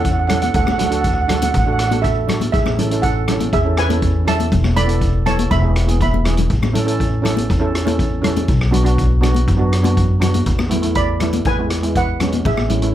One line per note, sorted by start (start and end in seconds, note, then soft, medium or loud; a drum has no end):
0.00 0.51 E2 loud
0.00 0.14 C#4 medium
0.00 0.15 E4 medium
0.00 0.15 A4 medium
0.00 0.10 F#5 medium
0.05 kick medium
0.05 closed hi-hat medium
0.12 0.18 F#5 medium
0.19 0.26 F#5 medium
0.27 0.54 C#4 medium
0.27 0.54 E4 medium
0.27 0.55 A4 medium
0.27 0.33 F#5 medium
0.27 cross-stick medium
0.27 closed hi-hat medium
0.27 low conga medium
0.34 0.41 F#5 medium
0.42 0.49 F#5 medium
0.42 closed hi-hat medium
0.42 high conga medium
0.54 1.50 D2 loud
0.54 0.62 A4 medium
0.54 0.63 F#5 medium
0.54 kick loud
0.54 closed hi-hat medium
0.64 0.71 F#5 medium
0.64 cross-stick medium
0.68 0.78 F#5 medium
0.68 high conga medium
0.78 0.86 D4 medium
0.78 0.87 F#4 medium
0.78 0.87 A4 medium
0.78 0.85 F#5 medium
0.78 closed hi-hat medium
0.78 low conga medium
0.86 0.93 F#5 medium
0.90 1.13 D4 medium
0.90 1.14 F#4 medium
0.90 1.14 A4 medium
0.90 1.00 F#5 medium
0.90 closed hi-hat medium
1.01 1.06 F#5 medium
1.01 kick medium
1.01 closed hi-hat medium
1.07 1.12 F#5 medium
1.14 1.20 F#5 medium
1.22 1.27 F#5 medium
1.28 1.51 D4 medium
1.28 1.52 F#4 medium
1.28 1.52 A4 medium
1.28 1.36 F#5 medium
1.28 cross-stick medium
1.28 closed hi-hat medium
1.28 low conga medium
1.37 1.42 F#5 soft
1.42 1.50 F#5 medium
1.42 closed hi-hat medium
1.42 high conga medium
1.51 2.50 A1 loud
1.51 1.57 F#5 soft
1.51 kick loud
1.51 closed hi-hat medium
1.58 1.64 F#5 medium
1.65 1.81 D4 medium
1.65 1.82 F#4 medium
1.65 1.82 A4 medium
1.65 1.71 F#5 medium
1.73 1.79 F#5 medium
1.79 1.86 F#5 medium
1.79 cross-stick medium
1.79 closed hi-hat medium
1.88 2.13 D4 medium
1.88 1.96 F#5 medium
1.88 high conga medium
1.92 2.14 F#4 medium
1.92 2.14 A4 medium
1.92 closed hi-hat medium
2.02 2.49 A4 medium
2.02 2.51 E5 medium
2.02 kick medium
2.02 closed hi-hat medium
2.27 2.53 D4 medium
2.27 2.53 F#4 medium
2.27 2.54 A4 medium
2.27 cross-stick medium
2.27 closed hi-hat medium
2.27 low conga medium
2.41 closed hi-hat medium
2.41 high conga medium
2.52 3.49 A1 loud
2.52 3.00 G#4 medium
2.52 3.04 E5 medium
2.52 kick loud
2.52 closed hi-hat medium
2.66 cross-stick medium
2.66 high conga medium
2.78 2.86 C#4 medium
2.78 2.86 E4 medium
2.78 2.87 A4 medium
2.78 closed hi-hat medium
2.78 low conga medium
2.91 3.13 C#4 medium
2.91 3.14 E4 medium
2.91 3.14 A4 medium
2.91 closed hi-hat medium
3.02 3.49 A4 medium
3.02 3.54 F#5 medium
3.02 kick medium
3.02 closed hi-hat medium
3.28 3.50 C#4 medium
3.28 3.51 E4 medium
3.28 3.51 A4 medium
3.28 cross-stick medium
3.28 closed hi-hat medium
3.28 low conga medium
3.40 closed hi-hat medium
3.40 high conga medium
3.53 4.48 E2 loud
3.53 3.76 G#4 medium
3.53 3.78 E5 medium
3.53 kick medium
3.53 closed hi-hat medium
3.65 3.80 C#4 medium
3.65 3.80 E4 medium
3.65 3.81 A4 medium
3.77 4.24 B4 medium
3.77 4.29 G#5 loud
3.77 cross-stick medium
3.77 closed hi-hat medium
3.89 4.12 C#4 medium
3.89 4.12 E4 medium
3.89 4.12 A4 medium
3.89 closed hi-hat medium
3.89 high conga medium
4.02 kick medium
4.02 closed hi-hat medium
4.25 4.51 C#4 medium
4.25 4.51 E4 medium
4.25 4.52 A4 medium
4.25 4.74 E5 medium
4.25 4.78 A5 loud
4.25 cross-stick medium
4.25 closed hi-hat medium
4.25 low conga medium
4.40 closed hi-hat medium
4.40 high conga medium
4.52 5.47 E1 loud
4.52 kick loud
4.52 closed hi-hat medium
4.52 low conga medium
4.64 cross-stick medium
4.64 high conga medium
4.75 4.83 B3 medium
4.75 4.84 E4 medium
4.75 4.84 A4 medium
4.75 5.23 D5 medium
4.75 5.23 B5 loud
4.75 closed hi-hat medium
4.75 low conga medium
4.87 5.10 B3 medium
4.87 5.11 E4 medium
4.87 5.11 A4 medium
4.87 closed hi-hat medium
5.01 kick medium
5.01 closed hi-hat medium
5.26 5.48 B3 medium
5.26 5.49 E4 medium
5.26 5.49 A4 medium
5.26 5.50 C#5 medium
5.26 5.52 A5 medium
5.26 cross-stick medium
5.26 closed hi-hat medium
5.26 low conga medium
5.39 closed hi-hat medium
5.39 high conga medium
5.51 6.46 E1 loud
5.51 5.97 E5 medium
5.51 6.01 B5 loud
5.51 kick loud
5.51 closed hi-hat medium
5.51 high conga medium
5.62 5.77 B3 medium
5.62 5.78 E4 medium
5.62 5.79 G#4 medium
5.76 cross-stick medium
5.76 closed hi-hat medium
5.87 6.10 B3 medium
5.87 6.10 E4 medium
5.87 6.10 G#4 medium
5.87 closed hi-hat medium
5.87 high conga medium
6.01 6.36 E5 medium
6.01 6.36 B5 medium
6.01 kick medium
6.01 closed hi-hat medium
6.01 high conga medium
6.14 high conga medium
6.24 6.49 B3 medium
6.24 6.50 E4 medium
6.24 6.50 G#4 medium
6.24 cross-stick medium
6.24 closed hi-hat medium
6.24 low conga medium
6.37 closed hi-hat medium
6.37 low conga medium
6.50 7.45 A1 loud
6.50 kick loud
6.50 closed hi-hat medium
6.62 cross-stick medium
6.62 high conga medium
6.73 6.81 C#4 medium
6.73 6.82 E4 medium
6.73 6.82 A4 medium
6.73 closed hi-hat medium
6.73 low conga medium
6.86 7.09 C#4 medium
6.86 7.09 E4 medium
6.86 7.09 A4 medium
6.86 closed hi-hat medium
7.00 kick medium
7.00 closed hi-hat medium
7.22 7.45 C#4 medium
7.22 7.46 E4 medium
7.22 7.46 A4 medium
7.22 cross-stick medium
7.22 closed hi-hat medium
7.22 low conga medium
7.37 closed hi-hat medium
7.37 high conga medium
7.50 8.45 E2 loud
7.50 kick loud
7.50 closed hi-hat medium
7.60 7.75 C#4 medium
7.60 7.76 E4 medium
7.60 7.76 A4 loud
7.75 cross-stick medium
7.75 closed hi-hat medium
7.85 8.08 C#4 medium
7.85 8.08 E4 medium
7.85 8.09 A4 medium
7.85 closed hi-hat medium
7.85 high conga medium
7.99 kick medium
7.99 closed hi-hat medium
8.22 8.47 C#4 medium
8.22 8.48 E4 medium
8.22 8.48 A4 medium
8.22 cross-stick medium
8.22 closed hi-hat medium
8.22 low conga medium
8.36 closed hi-hat medium
8.36 high conga medium
8.48 9.43 B1 loud
8.48 kick loud
8.48 closed hi-hat medium
8.61 cross-stick medium
8.71 8.79 B3 medium
8.71 8.80 D4 medium
8.71 8.80 F#4 medium
8.71 closed hi-hat medium
8.71 low conga medium
8.83 9.07 B3 medium
8.83 9.07 D4 medium
8.83 9.07 F#4 loud
8.83 closed hi-hat medium
8.98 kick medium
8.98 closed hi-hat medium
9.21 9.44 B3 medium
9.21 9.44 D4 medium
9.21 9.45 F#4 loud
9.21 cross-stick medium
9.21 closed hi-hat medium
9.21 low conga medium
9.35 closed hi-hat medium
9.35 high conga medium
9.48 10.43 F#2 loud
9.48 kick loud
9.48 closed hi-hat medium
9.57 9.73 B3 medium
9.57 9.74 D4 medium
9.57 9.74 F#4 medium
9.73 cross-stick medium
9.73 closed hi-hat medium
9.82 10.06 B3 medium
9.82 10.06 D4 medium
9.82 10.07 F#4 medium
9.82 closed hi-hat medium
9.82 high conga medium
9.97 kick medium
9.97 closed hi-hat medium
10.20 10.46 B3 medium
10.20 10.46 D4 medium
10.20 10.47 F#4 medium
10.20 cross-stick medium
10.20 closed hi-hat medium
10.20 low conga medium
10.34 closed hi-hat medium
10.34 high conga medium
10.46 11.42 E2 loud
10.46 kick loud
10.46 closed hi-hat medium
10.59 cross-stick medium
10.59 high conga medium
10.69 10.78 A3 medium
10.69 10.78 B3 medium
10.69 10.78 E4 medium
10.69 closed hi-hat medium
10.69 low conga medium
10.82 11.05 A3 medium
10.82 11.06 B3 medium
10.82 11.06 E4 medium
10.82 closed hi-hat medium
10.95 11.43 D5 medium
10.95 11.47 B5 loud
10.95 kick medium
10.95 closed hi-hat medium
11.20 11.43 A3 medium
11.20 11.44 B3 medium
11.20 11.44 E4 medium
11.20 cross-stick medium
11.20 closed hi-hat medium
11.20 low conga medium
11.33 closed hi-hat medium
11.33 high conga medium
11.45 12.41 E2 medium
11.45 11.93 B4 medium
11.45 11.97 G#5 medium
11.45 kick loud
11.45 closed hi-hat medium
11.58 11.73 G#3 medium
11.58 11.74 B3 medium
11.58 11.74 E4 medium
11.70 cross-stick medium
11.70 closed hi-hat medium
11.83 12.05 G#3 medium
11.83 12.05 B3 medium
11.83 12.06 E4 medium
11.83 closed hi-hat medium
11.95 12.43 B4 medium
11.95 12.42 F#5 medium
11.95 kick medium
11.95 closed hi-hat medium
12.20 12.45 G#3 medium
12.20 12.46 B3 medium
12.20 12.46 C#4 medium
12.20 cross-stick medium
12.20 closed hi-hat medium
12.20 low conga medium
12.32 closed hi-hat medium
12.32 high conga medium
12.45 12.95 A1 loud
12.45 12.92 G#4 medium
12.45 12.95 E5 medium
12.45 kick loud
12.45 closed hi-hat medium
12.45 low conga medium
12.57 cross-stick medium
12.57 high conga medium
12.69 12.77 A3 medium
12.69 12.77 C#4 medium
12.69 12.77 E4 medium
12.69 closed hi-hat medium
12.69 low conga medium
12.82 12.95 A3 medium
12.82 12.95 C#4 medium
12.82 12.95 E4 medium
12.82 closed hi-hat medium